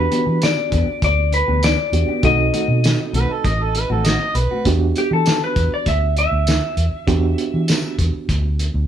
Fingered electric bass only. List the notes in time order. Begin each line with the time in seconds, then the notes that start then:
0.27 E3
0.72 E2
0.87 muted fingered electric bass stroke
1.02 D2
1.48 D2
1.92 E2
2.08 muted fingered electric bass stroke
2.23 B1
2.68 B2
3.13 B1
3.44 A1
3.90 A1
4.35 B1
4.65 E2
5.11 E3
5.56 E2
5.72 muted fingered electric bass stroke
5.86 D2
6.32 D2
6.77 E2
6.93 muted fingered electric bass stroke
7.07 E2
7.54 E3
7.98 E2
8.14 muted fingered electric bass stroke
8.29 D2
8.74 D2